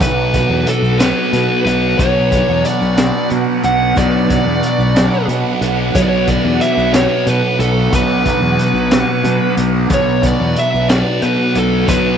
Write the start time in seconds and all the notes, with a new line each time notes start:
Already playing: F#3 B3 D4 B4 F#5
0.00 B1 B2 F#3 B3 B4, kick, closed hi-hat, shaker
0.34 F#3 B3, kick, closed hi-hat, shaker
0.49 E2
0.67 A4, closed hi-hat
0.82 B1, shaker
0.99 B2 F#3 B3 B4, snare, closed hi-hat, shaker
1.33 B2 F#3 B3, closed hi-hat
1.64 B1 B3 B4, closed hi-hat
1.69 F#3
1.98 B1 B2 F#3 B3 C#5, kick, closed hi-hat, shaker
2.32 F#3 B3, kick, closed hi-hat, shaker
2.49 E2
2.65 D5, closed hi-hat
2.82 B1, shaker
2.97 B2 F#3 B3, snare, closed hi-hat, shaker
3.30 B2 F#3 B3, closed hi-hat
3.62 B1 F#3 B3 F#5, closed hi-hat
3.96 B1 B2 F#3 B3 D5, kick, closed hi-hat, shaker
4.29 F#3 B3, kick, closed hi-hat
4.45 E2
4.63 closed hi-hat
4.78 B1, shaker
4.95 B2 F#3 B3, snare, closed hi-hat, shaker
5.13 shaker
5.28 B2 F#3 B3, closed hi-hat
5.61 B1 F#3 B3, closed hi-hat, shaker
5.95 B1 B2 F#3 B3 C#5, kick, closed hi-hat, shaker
6.03 D5
6.09 C#5
6.28 F#3 B3 D5, kick, closed hi-hat, shaker
6.45 E2
6.61 E5, closed hi-hat
6.77 B1, shaker
6.94 B2 F#3 B3 C#5, snare, closed hi-hat, shaker
7.27 B2 F#3 B3 B4, closed hi-hat
7.59 B1 F#3 B3 A4, closed hi-hat
7.92 B1 B2 F#3 B3 B4, kick, closed hi-hat, shaker
8.26 F#3 B3, kick, closed hi-hat, shaker
8.41 E2
8.59 closed hi-hat
8.74 B1, shaker
8.91 B2 F#3 B3, snare, closed hi-hat, shaker
9.24 B2 F#3 B3, closed hi-hat
9.57 B1 F#3 B3, closed hi-hat
9.89 B1 B2 F#3 B3, kick, closed hi-hat, shaker
9.94 C#5
10.22 F#3 B3, kick, closed hi-hat, shaker
10.27 D5
10.40 E2
10.56 E5, closed hi-hat
10.74 B1, shaker
10.89 B2 F#3 B3 D5, snare, closed hi-hat, shaker
11.21 B2 F#3 B3 B4, closed hi-hat
11.55 B1 F#3 B3 A4, closed hi-hat
11.87 B1 B2 F#3 B3 B4, kick, closed hi-hat, shaker